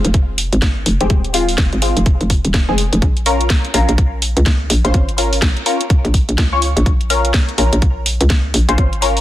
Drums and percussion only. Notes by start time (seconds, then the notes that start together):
0.05 closed hi-hat
0.14 kick, closed hi-hat
0.38 open hi-hat
0.53 closed hi-hat
0.62 kick, snare, closed hi-hat
0.86 open hi-hat
1.01 closed hi-hat
1.10 kick, closed hi-hat
1.24 closed hi-hat
1.34 open hi-hat
1.49 open hi-hat
1.58 kick, snare, closed hi-hat
1.73 closed hi-hat
1.82 open hi-hat
1.97 closed hi-hat
2.06 kick, closed hi-hat
2.21 closed hi-hat
2.30 kick, open hi-hat
2.45 closed hi-hat
2.54 kick, snare, closed hi-hat
2.78 open hi-hat
2.93 closed hi-hat
3.02 kick, closed hi-hat
3.17 closed hi-hat
3.26 open hi-hat
3.41 closed hi-hat
3.50 kick, snare, closed hi-hat
3.65 closed hi-hat
3.74 open hi-hat
3.89 closed hi-hat
3.98 kick, closed hi-hat
4.22 open hi-hat
4.37 closed hi-hat
4.46 kick, snare, closed hi-hat
4.70 open hi-hat
4.85 closed hi-hat
4.94 kick, closed hi-hat
5.09 closed hi-hat
5.18 open hi-hat
5.33 open hi-hat
5.42 kick, snare, closed hi-hat
5.57 closed hi-hat
5.66 open hi-hat
5.81 closed hi-hat
5.90 kick, closed hi-hat
6.05 closed hi-hat
6.14 kick, open hi-hat
6.29 closed hi-hat
6.38 kick, snare, closed hi-hat
6.62 open hi-hat
6.77 closed hi-hat
6.86 kick, closed hi-hat
7.01 closed hi-hat
7.10 open hi-hat
7.25 closed hi-hat
7.34 kick, snare, closed hi-hat
7.49 closed hi-hat
7.58 open hi-hat
7.73 closed hi-hat
7.82 kick, closed hi-hat
8.06 open hi-hat
8.21 closed hi-hat
8.30 kick, snare, closed hi-hat
8.54 open hi-hat
8.69 closed hi-hat
8.78 kick, closed hi-hat
8.93 closed hi-hat
9.02 open hi-hat
9.17 open hi-hat